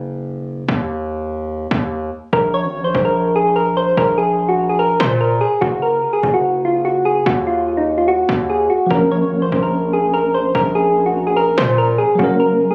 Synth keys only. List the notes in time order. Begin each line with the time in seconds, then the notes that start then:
2.33 A#4
2.54 C#5
2.84 C5
3.05 A#4
3.36 G#4
3.56 A#4
3.77 C5
3.98 A#4
4.18 G#4
4.49 F#4
4.69 G#4
4.79 A#4
5.00 C5
5.21 A#4
5.41 G#4
5.61 F#4
5.82 A#4
6.13 G#4
6.34 F#4
6.65 F4
6.85 F#4
7.05 G#4
7.26 F#4
7.47 F4
7.77 D#4
7.98 F4
8.08 F#4
8.50 G#4
8.70 F#4
8.91 A#4
9.12 C#5
9.42 C5
9.63 A#4
9.93 G#4
10.14 A#4
10.34 C5
10.55 A#4
10.75 G#4
11.06 F#4
11.27 G#4
11.37 A#4
11.58 C5
11.78 A#4
11.98 G#4
12.19 F#4
12.40 A#4
12.71 G#4